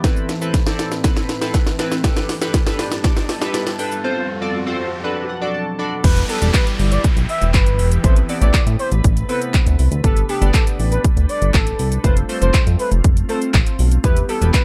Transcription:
Already playing: E3, riser
0.04 A2 C4 E4 A4 B4, kick, snare, closed hi-hat, shaker
0.16 shaker
0.29 snare, closed hi-hat, shaker
0.41 C4 E4 A4 B4, shaker
0.54 kick, snare, closed hi-hat, shaker
0.66 C4 E4 A4 D5, snare, shaker
0.79 snare, closed hi-hat, shaker
0.92 snare, shaker
1.04 C4 E4 A4 B4, kick, snare, closed hi-hat, shaker
1.17 snare, shaker
1.29 snare, closed hi-hat, shaker
1.41 C4 E4 A4 B4, snare, shaker
1.54 kick, snare, closed hi-hat, shaker
1.67 snare, shaker
1.79 C4 E4 A4 B4, snare, closed hi-hat, shaker
1.92 snare, shaker
2.04 G2 G3 B3 D4 G4 A4 B4, kick, snare, closed hi-hat, shaker
2.16 snare, shaker
2.29 snare, open hi-hat, shaker
2.41 D4 G4 A4 B4, snare, shaker
2.54 kick, snare, closed hi-hat, shaker
2.66 D4 G4 A4 B4, snare, shaker
2.79 snare, open hi-hat, shaker
2.92 snare, shaker
3.04 D4 G4 A4 D5, kick, snare, closed hi-hat, shaker
3.17 snare, shaker
3.29 snare, open hi-hat, shaker
3.41 D4 G4 A4 B4, snare, shaker
3.54 snare, closed hi-hat, shaker
3.67 snare, shaker
3.79 D4 G4 A4 B4, open hi-hat, shaker
3.92 shaker
4.04 F2 F3 C4 F4 A4 C5
4.41 C4 F4 A4 D5
4.67 C4 F4 A4 C5
5.04 B2 F#3 D4 F#4 A4 B4
5.29 F#5
5.41 D4 F#4 A4 D5
5.54 A5
5.79 D4 F#4 A4 D5 B5
6.04 E1 E3 G3 B3 E4 G4 B4, kick, closed hi-hat, crash, downlifter, shaker
6.17 closed hi-hat, shaker
6.29 G3 B3 E4 G4 A4 B4, open hi-hat, shaker
6.41 E1 G3 B3 E4 G4 D5, closed hi-hat, shaker
6.54 B4, kick, clap, closed hi-hat, shaker
6.67 closed hi-hat, shaker
6.79 G1, open hi-hat, shaker
6.92 D5, closed hi-hat, shaker
7.04 kick, closed hi-hat, shaker
7.17 B1, closed hi-hat, shaker
7.29 E5, open hi-hat, shaker
7.42 E1, closed hi-hat, shaker
7.54 G1 B4, kick, clap, closed hi-hat, shaker
7.66 closed hi-hat, shaker
7.79 E1, open hi-hat, shaker
7.92 closed hi-hat, shaker
8.04 A1 C3 A3 B3 C4 E4 A4 B4 C5, kick, closed hi-hat, shaker
8.16 closed hi-hat, shaker
8.29 B3 C4 E4 A4 D5, open hi-hat, shaker
8.41 A1 B3 C4 E4 A4 D5, closed hi-hat, shaker
8.54 A2, kick, clap, closed hi-hat, shaker
8.67 A2, closed hi-hat, shaker
8.79 C5, open hi-hat, shaker
8.92 A1, closed hi-hat, shaker
9.04 A1, kick, closed hi-hat, shaker
9.17 closed hi-hat, shaker
9.29 B3 C4 E4 A4 B4, open hi-hat, shaker
9.42 closed hi-hat, shaker
9.54 kick, clap, closed hi-hat, shaker
9.67 D2, closed hi-hat, shaker
9.79 C2, open hi-hat, shaker
9.92 D2, closed hi-hat, shaker
10.04 G1 G3 B3 D4 G4 A4 B4, kick, closed hi-hat, shaker
10.17 closed hi-hat, shaker
10.29 B3 D4 G4 A4 B4, open hi-hat, shaker
10.41 G1 B3 D4 G4 A4 D5, closed hi-hat, shaker
10.54 A4, kick, clap, closed hi-hat, shaker
10.67 closed hi-hat, shaker
10.79 A1, open hi-hat, shaker
10.91 B4, closed hi-hat, shaker
11.04 kick, closed hi-hat, shaker
11.17 D2, closed hi-hat, shaker
11.29 D5, open hi-hat, shaker
11.42 G1, closed hi-hat, shaker
11.54 A1 A4, kick, clap, closed hi-hat, shaker
11.67 closed hi-hat, shaker
11.79 C2, open hi-hat, shaker
11.92 closed hi-hat, shaker
12.04 F1 A3 C4 F4 A4 B4 C5, kick, closed hi-hat, shaker
12.17 closed hi-hat, shaker
12.29 A3 C4 F4 A4 C5, open hi-hat, shaker
12.41 F1 A3 C4 F4 A4 C5, closed hi-hat, shaker
12.54 F2, kick, clap, closed hi-hat, shaker
12.67 F2, closed hi-hat, shaker
12.79 B4, open hi-hat, shaker
12.92 F1, closed hi-hat, shaker
13.04 F1, kick, closed hi-hat, shaker
13.17 closed hi-hat, shaker
13.29 A3 C4 F4 A4 C5, open hi-hat, shaker
13.42 closed hi-hat, shaker
13.54 A1, kick, clap, closed hi-hat, shaker
13.66 closed hi-hat, shaker
13.79 B1, open hi-hat, shaker
13.92 closed hi-hat, shaker
14.04 E1 E3 G3 B3 E4 G4 B4, kick, closed hi-hat, shaker
14.17 closed hi-hat, shaker
14.29 G3 B3 E4 G4 A4, open hi-hat, shaker
14.41 E1 G3 B3 E4 G4 B4, closed hi-hat, shaker
14.54 B4, kick, clap, closed hi-hat, shaker

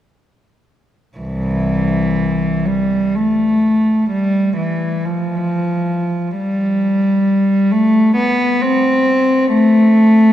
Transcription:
1.18 C2 E3
2.65 G3
3.15 A3
4.11 G3
4.57 E3
5.05 F3
6.39 G3
7.71 A3
8.17 B3
8.61 C4
9.54 A3

